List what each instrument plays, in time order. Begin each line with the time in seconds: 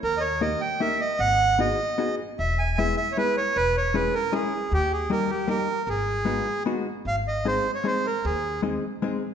0.03 upright bass D#2, bandoneon A#4
0.17 bandoneon C#5 D#5
0.41 hollow-body jazz guitar A#3 D#4 G4 A#4, bandoneon D#5
0.61 bandoneon G5
0.80 hollow-body jazz guitar A#3 D#4 G4 A#4, bandoneon E5
1.01 bandoneon D#5
1.19 upright bass G#1, bandoneon F#5
1.59 hollow-body jazz guitar B3 D#4 F#4 G#4, bandoneon D#5
1.98 hollow-body jazz guitar B3 D#4 F#4 G#4
2.39 upright bass E1, bandoneon E5
2.59 bandoneon G#5
2.78 hollow-body jazz guitar G#3 B3 E4 G#4, bandoneon E5
2.97 bandoneon E5
3.12 bandoneon C#5
3.17 hollow-body jazz guitar G#3 B3 E4 G#4, bandoneon B4
3.37 bandoneon C#5
3.56 upright bass E1, bandoneon B4
3.77 bandoneon C#5
3.94 hollow-body jazz guitar G#3 C#4 E4 G#4, bandoneon B4
4.14 bandoneon A#4
4.32 hollow-body jazz guitar G#3 C#4 E4 G#4, bandoneon G#4
4.72 upright bass D#2, bandoneon G4
4.92 bandoneon G#4
5.10 hollow-body jazz guitar G3 A#3 D#4 G4, bandoneon A#4
5.30 bandoneon G4
5.48 hollow-body jazz guitar G3 A#3 D#4 G4, bandoneon A#4
5.87 upright bass G#1, bandoneon G#4
6.25 hollow-body jazz guitar G#3 B3 D#4 F#4
6.66 hollow-body jazz guitar G#3 B3 D#4 F#4
7.05 upright bass G#1, bandoneon F5
7.28 bandoneon D#5
7.45 hollow-body jazz guitar G#3 C4 D#4 G#4, bandoneon C5
7.75 bandoneon C#5
7.84 hollow-body jazz guitar G#3 C4 D#4 G#4, bandoneon C5
8.06 bandoneon A#4
8.25 upright bass D#2, bandoneon G#4
8.62 hollow-body jazz guitar G#3 C4 D#4 G#4
9.02 hollow-body jazz guitar G#3 C4 D#4 G#4